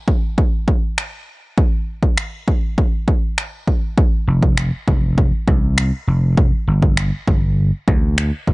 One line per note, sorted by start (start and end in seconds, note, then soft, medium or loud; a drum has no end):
0.08 kick loud
0.38 kick loud
0.68 kick medium
0.98 finger snap loud
1.58 kick loud
2.03 kick medium
2.18 finger snap loud
2.48 kick medium
2.78 kick loud
3.08 kick medium
3.38 finger snap loud
3.68 kick medium
3.98 kick loud
4.28 4.70 F1 medium
4.43 kick medium
4.58 finger snap loud
4.88 5.30 F1 medium
4.88 kick loud
5.18 kick medium
5.48 5.90 C2 medium
5.48 kick medium
5.78 finger snap loud
6.07 6.50 F1 medium
6.37 kick loud
6.67 7.10 G1 loud
6.82 kick medium
6.97 finger snap loud
7.28 7.70 G1 medium
7.28 kick loud
7.88 8.30 D2 medium
7.88 kick loud
8.18 finger snap loud
8.47 8.54 G1 medium
8.47 kick medium